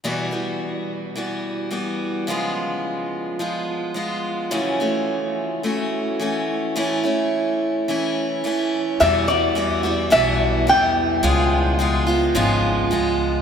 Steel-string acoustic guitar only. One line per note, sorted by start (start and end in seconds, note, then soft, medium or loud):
0.04 0.32 E2 soft
0.04 0.32 B2 medium
0.04 0.32 E3 medium
0.04 0.31 G3 medium
0.04 0.31 B3 medium
0.04 0.30 F#4 medium
0.31 1.14 E3 soft
0.31 1.15 G3 soft
0.31 1.17 B3 soft
0.31 1.16 F#4 soft
1.16 1.69 E3 soft
1.16 1.70 G3 soft
1.16 1.71 B3 soft
1.16 1.72 F#4 soft
1.71 2.27 E3 soft
1.71 2.28 G3 soft
1.71 2.28 B3 soft
1.71 2.28 F#4 soft
2.27 3.39 C#3 medium
2.27 3.38 F3 medium
2.27 3.39 G#3 medium
2.27 3.40 B3 medium
2.27 3.41 F4 medium
3.39 3.93 F3 soft
3.39 3.95 G#3 soft
3.39 3.95 B3 medium
3.39 3.96 F4 medium
3.94 4.51 F3 soft
3.94 4.51 G#3 soft
3.94 4.52 B3 soft
3.94 4.52 F4 medium
4.51 4.79 F#2 medium
4.51 4.80 C#3 medium
4.51 4.80 E3 medium
4.51 4.80 A3 medium
4.51 4.80 C#4 medium
4.51 4.79 F#4 medium
4.80 5.63 E3 soft
4.80 5.64 A3 soft
4.80 5.65 C#4 soft
4.80 5.64 F#4 soft
5.63 6.19 E3 soft
5.63 6.20 A3 soft
5.63 6.20 C#4 soft
5.63 6.21 F#4 medium
6.20 6.76 E3 soft
6.20 6.75 A3 soft
6.20 6.76 C#4 soft
6.20 6.77 F#4 medium
6.76 7.04 A2 medium
6.76 7.04 E3 medium
6.76 7.04 A3 medium
6.76 7.03 C#4 medium
6.76 7.02 E4 medium
7.04 7.88 A3 soft
7.04 7.88 C#4 soft
7.04 7.88 E4 soft
7.88 8.43 E3 medium
7.88 8.44 A3 soft
7.88 8.45 C#4 medium
7.88 8.45 E4 medium
8.44 9.00 E3 soft
8.44 9.00 A3 medium
8.44 9.01 C#4 medium
8.44 9.01 E4 medium
9.00 9.28 E2 medium
9.00 9.28 B2 medium
9.00 9.28 E3 medium
9.00 9.28 G3 medium
9.00 9.27 B3 medium
9.00 9.26 F#4 medium
9.28 9.54 E3 soft
9.28 9.55 G3 soft
9.28 9.56 B3 soft
9.28 9.56 F#4 soft
9.55 9.84 E3 soft
9.55 9.84 G3 soft
9.55 9.83 B3 soft
9.55 9.82 F#4 soft
9.83 10.10 E3 soft
9.83 10.11 G3 soft
9.83 10.11 B3 soft
9.83 10.12 F#4 soft
10.10 10.67 E2 medium
10.10 10.67 B2 medium
10.10 10.66 E3 medium
10.10 10.67 G3 medium
10.10 10.68 B3 medium
10.10 10.68 F#4 medium
10.67 11.23 E3 soft
10.67 11.23 G3 soft
10.67 11.23 B3 soft
11.23 11.79 C#3 medium
11.23 11.78 F3 medium
11.23 11.79 G#3 medium
11.23 11.80 B3 medium
11.23 11.80 F4 medium
11.79 12.07 F3 soft
11.79 12.08 G#3 medium
11.79 12.07 B3 medium
11.79 12.05 F4 medium
12.07 12.34 G#3 soft
12.07 12.35 B3 soft
12.07 12.35 F4 soft
12.35 12.91 C#3 medium
12.35 12.90 F3 medium
12.35 12.90 G#3 medium
12.35 12.92 B3 medium
12.35 12.92 F4 medium
12.91 13.42 F3 medium
12.91 13.42 G#3 medium
12.91 13.42 B3 medium
12.91 13.42 F4 medium